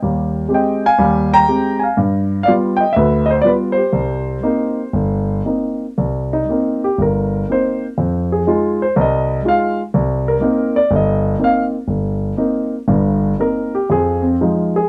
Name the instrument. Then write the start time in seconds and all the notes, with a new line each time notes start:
grand piano
0.02 D#2 G3
0.49 G#3 C4 G4
0.54 D#5 G5
0.86 F5 G#5
0.98 D#2 G3
1.33 G5 A#5
1.48 G#3 C4 G4
1.79 F5 G#5
1.97 G2
2.43 D5 F5
2.48 G3 B3 F4
2.76 D#5 G5
2.93 D2 B4 E5
3.26 D#5
3.31 C5
3.42 G3 B3 F4 D5
3.46 B4
3.72 C5
3.78 G4
3.93 C2
4.43 A#3 C4 D#4
4.93 G1
5.45 A#3 C4 D#4
5.98 C2
6.33 D#4
6.49 A#3 C4 D#4
6.84 G4
6.98 G1 A#4
7.49 A#3 C4 D#4 C5
7.98 F2
8.32 G#4
8.47 G#3 D#4 F4
8.82 C5
8.96 C2
9.01 D#5
9.45 G#3 D#4 F4 F5
9.94 C2
10.28 A#4
10.41 A#3 C4 D#4
10.76 D5
10.91 G1
10.96 D#5
11.39 A#3 C4 D#4
11.44 F5
11.88 G1
12.37 A#3 C4 D#4
12.88 G1 G2
13.39 A#3 C4 D#4 A#4
13.75 G4
13.90 F2 F3 G#4
14.22 C4
14.41 F3 G#3 D#4
14.76 G#4